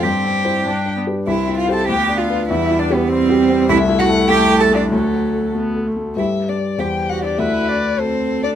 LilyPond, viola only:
\new Staff \with { instrumentName = "Viola" } { \time 2/4 \key c \major \tempo 4 = 98 c'4 d'8 b8 | c'4 b4 | g4 g4 | \key d \mixolydian a2 |
fis4 b8 a8 | r4 g'4 | b'4 a'4 | }